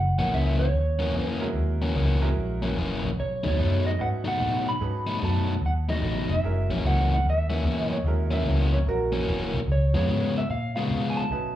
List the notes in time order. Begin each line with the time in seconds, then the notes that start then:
Already playing: F#1 F#5
0.19 A#1 F#2 E3 A#3 C#4 F#5
0.33 C#2 F#2 E3 A#3 C#4 E5
0.59 C#5
0.74 D#2
0.99 F#2 E3 A#3 C#4
1.15 E2 F#2 E3 A#3 C#4
1.24 B4
1.40 G#3 C#4 E4 F#4 A#4
1.55 D#2
1.82 F#2 E3 A#3 C#4
1.96 C#2 F#2 E3 A#3 C#4
2.21 G#3 C#4 E4 F#4 A#4
2.37 A#1
2.62 F#2 E3 A#3 C#4
2.77 E1 F#2 E3 A#3 C#4
3.03 A#1
3.19 B1 C#5
3.43 D#2 B2 F#3 A3 D#4
3.48 C#5
3.59 F#2 B2 F#3 A3 D#4
3.87 D#5
3.99 G#2 A3 C#4 D#4 F#4 B4 F#5
4.24 B2 F#3 A3 D#4 F#5
4.40 A2 B2 F#3 A3 D#4
4.69 B5
4.80 G#2 C#4 D#4 F#4 A4 B4
5.07 B2 F#3 A3 D#4
5.22 F#2 B2 F#3 A3 D#4 A5
5.62 D#2
5.66 F#5
5.89 B2 F#3 A3 D#4 D#5
6.02 A1 B2 F#3 A3 D#4
6.29 F1 E5
6.43 F#1 G#3 C#4 E4 F#4 A#4
6.69 A#1 F#2 E3 A#3 C#4
6.84 C#2 F#2 E3 A#3 C#4 F#5
7.14 F#5
7.24 D#2
7.30 E5
7.50 F#2 E3 A#3 C#4
7.65 E2 F#2 E3 A#3 C#4
7.81 D#5
7.91 C#5
8.04 D#2 G#3 C#4 E4 F#4 A#4
8.31 F#2 E3 A#3 C#4 E5
8.45 C#2 F#2 E3 A#3 C#4
8.73 C#5
8.86 A#1 F#4 A#4
9.12 F#2 E3 A#3 C#4
9.27 E1 F#2 E3 A#3 C#4
9.54 B1
9.68 C#2
9.72 C#5
9.94 F2 C#3 G#3 B3 F4 C#5
10.08 G#2 C#3 G#3 B3 F4
10.38 E5
10.50 A#2 F5
10.76 C#3 G#3 B3 F4 F5
10.91 B2 C#3 G#3 B3 F4
11.10 G#5
11.17 A5
11.30 B1 A3 C#4 D#4 F#4 B4